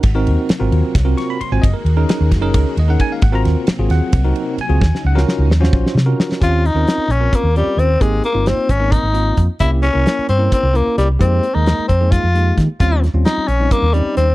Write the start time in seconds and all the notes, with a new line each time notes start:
Already playing: F#5
0.03 G#1 C3 F#3 A#3, kick, ride, crash
0.15 C4 D#4 F#4 A#4
0.26 D#2, ride
0.49 muted fingered electric bass stroke, snare, ride
0.59 G#1 C4 F4 F#4 A#4
0.72 D#2, ride
0.83 muted fingered electric bass stroke
0.95 C2, kick, snare, ride
1.05 C4 F4 F#4 A#4
1.18 C#6, snare, ride
1.30 B5
1.41 C6, muted fingered electric bass stroke, ride
1.52 G#1 C4 F4 F#4 C5 G#5
1.62 F#1 D#3 G#3 F#4 D#5, kick, ride
1.74 A#4
1.85 D#2, ride
1.97 C#4 D#4 G#4 A#4
2.09 muted fingered electric bass stroke, snare, ride
2.21 D#2
2.31 F#1, kick, snare, ride
2.42 C#4 D#4 G#4 A#4
2.54 C#2, kick, ride
2.77 D#2 D#5, ride
2.88 C#4 D#4 G#4 A#4 F#5
3.00 G#5, kick, ride
3.12 F5
3.22 G#1 C3 F#3 F#5, kick, ride
3.32 C4 F4 F#4 A#4 A#5
3.45 D#2, snare, ride
3.67 muted fingered electric bass stroke, snare, ride
3.79 G#1 C4 F4 F#4 G#4
3.90 D#2 F#5, snare, ride
4.02 muted fingered electric bass stroke
4.13 C2, kick, ride
4.24 C4 D#4 F#4 A#4
4.36 ride
4.58 G#5, muted fingered electric bass stroke, ride
4.69 C#2 C4 F4 F#4 G#4
4.81 D#2 C#3 D#4, kick, snare
4.95 snare
5.05 C#2 F#5
5.15 C#4 F4 F#4 A#4, snare
5.27 muted fingered electric bass stroke, snare
5.39 C#2
5.49 D#2, snare
5.60 C#4 F4 F#4 C5, snare
5.73 A#1, kick
5.86 snare
5.95 C3, snare
6.06 C#4 F4 F#4 A#4
6.20 snare
6.32 snare
6.40 D#2 C4 C#4 F4 G4, kick, closed hi-hat
6.65 D#4, closed hi-hat
6.74 D#2 C4 C#4 F4 A#4
6.87 snare, closed hi-hat
6.98 muted fingered electric bass stroke
7.08 A#1 C#4, closed hi-hat
7.20 C4 C#4 F4 A#4
7.33 A#3, muted fingered electric bass stroke, kick, closed hi-hat
7.44 D#2
7.55 G3 C4 C#4 F4 A#4, closed hi-hat
7.66 muted fingered electric bass stroke
7.77 D#2 C4, closed hi-hat
8.01 G#1 G#3 A#3 C4 D#4 G4, kick, closed hi-hat
8.24 A#3, closed hi-hat
8.33 G1 A#3 C4 D#4 F4
8.46 C4, snare, closed hi-hat
8.57 muted fingered electric bass stroke
8.69 G#1 C#4, kick, closed hi-hat
8.80 A#3 C4 D#4 A#4
8.92 D#4, kick, closed hi-hat
9.03 G#1
9.13 A#3 C4 D#4 F4, closed hi-hat
9.37 F2, kick, closed hi-hat
9.59 C2 A#3 C#4 E4 G4, kick, closed hi-hat
9.82 C#4, snare, closed hi-hat
9.93 C2 A#3 C#4 E4 A#4
10.06 snare, closed hi-hat
10.19 muted fingered electric bass stroke
10.29 G2 C4, closed hi-hat
10.38 A#3 C#4 E4 A#4
10.52 C4, muted fingered electric bass stroke, kick, closed hi-hat
10.63 C2
10.73 A#3 C#4 E4 A#4, closed hi-hat
10.87 muted fingered electric bass stroke
10.98 C2 G3, snare, closed hi-hat
11.19 F2 G#3 A#3 C4 D#4 G4, kick, closed hi-hat
11.43 closed hi-hat
11.54 D#2 G#3 A#3 D#4 A#4
11.66 snare, closed hi-hat
11.79 muted fingered electric bass stroke
11.88 F2 C4, kick, closed hi-hat
12.01 G#3 A#3 D#4 G#4
12.11 F4, kick, closed hi-hat
12.24 F2
12.34 G#3 A#3 D#4 G4, closed hi-hat
12.57 D#3, kick, snare, closed hi-hat
12.80 D#2 G3 C4 C#4 F4, kick, closed hi-hat
13.04 snare, closed hi-hat
13.14 D#2 G3 C4 C#4 F4
13.25 D#4, snare, closed hi-hat
13.37 muted fingered electric bass stroke
13.48 A#1 C#4, closed hi-hat
13.60 G3 C4 C#4 D#4
13.71 A#3, muted fingered electric bass stroke, kick, closed hi-hat
13.82 D#2
13.94 G3 C4 C#4 D#4, closed hi-hat
14.05 muted fingered electric bass stroke
14.17 D#2 C4, snare, closed hi-hat